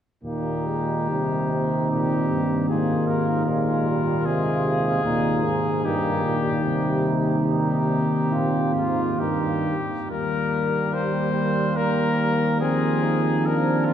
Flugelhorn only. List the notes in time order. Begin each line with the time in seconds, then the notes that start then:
0.24 D#4
1.10 D#4
2.70 F4
5.04 D#4
5.85 D#4
6.66 D#4
8.32 F4
9.20 D#4
10.93 G3
11.77 A#3
12.62 C4
13.03 D#4
13.46 D4